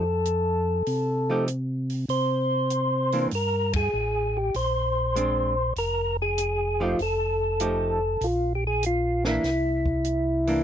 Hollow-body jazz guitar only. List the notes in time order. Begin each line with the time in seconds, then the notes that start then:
1.30 F3 A3 D#4 G4
3.13 E3 A#3 D4
5.16 G#3 C4 D4
6.80 F3 A3 D#4 G4
7.60 F3 A3 D#4 G4
9.25 E3 A#3 D4
10.48 E3 A#3 D4